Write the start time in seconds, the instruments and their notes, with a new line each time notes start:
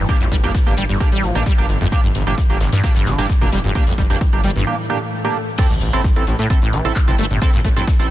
Already playing: synth drone A2 E3
0.09 analog polysynth A#3 D4 G4, kick, closed hi-hat
0.21 detuned saw bass A1, acid bass F2, closed hi-hat
0.32 detuned saw bass G1, acid bass G3, kick, closed hi-hat, open hi-hat
0.44 detuned saw bass G1, acid bass F2, analog polysynth A#3 D4 G4, closed hi-hat
0.55 kick, snare, closed hi-hat
0.66 detuned saw bass G1, analog polysynth A#3 D4 G4, snare, closed hi-hat
0.77 detuned saw bass G1, acid bass G3, snare, closed hi-hat, open hi-hat
0.89 detuned saw bass G1, acid bass G2, snare, closed hi-hat
1.00 analog polysynth A#3 D4 G4, kick, closed hi-hat
1.12 detuned saw bass A1, acid bass G3, closed hi-hat
1.23 detuned saw bass A1, acid bass F3, snare, closed hi-hat, open hi-hat
1.35 detuned saw bass A1, acid bass G2, analog polysynth A#3 D4 G4, snare, closed hi-hat
1.46 acid bass G3, kick, snare, closed hi-hat
1.58 detuned saw bass G1, analog polysynth A#3 D4 G4, closed hi-hat
1.69 detuned saw bass G1, closed hi-hat, open hi-hat
1.81 detuned saw bass G1, acid bass F2, closed hi-hat
1.92 acid bass G2, analog polysynth A#3 D4 G4, kick, closed hi-hat
2.04 detuned saw bass G1, acid bass G2, closed hi-hat
2.15 detuned saw bass G1, closed hi-hat, open hi-hat
2.27 detuned saw bass G1, analog polysynth A#3 D4 G4, closed hi-hat
2.38 kick, snare, closed hi-hat
2.50 detuned saw bass G1, analog polysynth A#3 D4 G4, closed hi-hat
2.60 detuned saw bass G1, snare, closed hi-hat, open hi-hat
2.72 detuned saw bass G2, acid bass G2, snare, closed hi-hat
2.83 acid bass G2, analog polysynth A#3 D4 G4, kick, snare, closed hi-hat
2.95 detuned saw bass G1, acid bass G2, snare, closed hi-hat
3.06 detuned saw bass G1, acid bass D3, snare, closed hi-hat, open hi-hat
3.18 detuned saw bass G1, acid bass G2, analog polysynth A#3 D4 G4, snare, closed hi-hat
3.29 acid bass G2, kick, snare, closed hi-hat
3.41 detuned saw bass F1, acid bass A#2, analog polysynth A#3 D4 G4, closed hi-hat
3.52 detuned saw bass F1, acid bass G3, closed hi-hat, open hi-hat
3.64 detuned saw bass F1, acid bass G2, closed hi-hat
3.75 analog polysynth A#3 D4 G4, kick, closed hi-hat
3.87 detuned saw bass A1, acid bass F2, closed hi-hat
3.98 detuned saw bass G1, acid bass G3, kick, open hi-hat
4.10 detuned saw bass G1, acid bass F2, analog polysynth A#3 D4 G4, closed hi-hat
4.21 kick, closed hi-hat
4.33 detuned saw bass G1, analog polysynth A#3 D4 G4, closed hi-hat
4.43 detuned saw bass G1, acid bass G3, closed hi-hat, open hi-hat
4.56 detuned saw bass G1, acid bass G2, snare, closed hi-hat
4.67 analog polysynth A#3 D4 G4, swell
4.90 analog polysynth A#3 D4 G4
5.24 analog polysynth A#3 D4 G4
5.58 acid bass A2, analog polysynth C4 E4 A4, kick, closed hi-hat, crash, impact
5.70 detuned saw bass A1, acid bass A2, closed hi-hat
5.81 detuned saw bass A1, closed hi-hat, open hi-hat
5.93 detuned saw bass A1, analog polysynth C4 E4 A4, closed hi-hat
6.04 kick, snare, closed hi-hat
6.16 detuned saw bass A1, analog polysynth C4 E4 A4, closed hi-hat
6.27 detuned saw bass A1, closed hi-hat, open hi-hat
6.39 acid bass A2, detuned saw bass A2, snare, closed hi-hat
6.50 analog polysynth C4 E4 A4, kick, closed hi-hat
6.62 detuned saw bass A1, acid bass A2, closed hi-hat
6.73 detuned saw bass A1, acid bass E3, closed hi-hat, open hi-hat
6.85 detuned saw bass A1, acid bass A2, analog polysynth C4 E4 A4, closed hi-hat
6.96 acid bass A2, kick, snare, clap, closed hi-hat
7.08 detuned saw bass G1, acid bass C3, analog polysynth C4 E4 A4, closed hi-hat
7.18 detuned saw bass G1, acid bass A3, closed hi-hat, open hi-hat
7.31 detuned saw bass G1, acid bass A2, closed hi-hat
7.42 acid bass A2, analog polysynth C4 E4 A4, kick, closed hi-hat
7.53 detuned saw bass A#1, acid bass G2, closed hi-hat
7.65 detuned saw bass A1, acid bass A3, kick, closed hi-hat, open hi-hat
7.76 detuned saw bass A1, acid bass G2, analog polysynth C4 E4 A4, closed hi-hat
7.87 kick, snare, closed hi-hat
7.99 detuned saw bass A1, analog polysynth C4 E4 A4, snare, closed hi-hat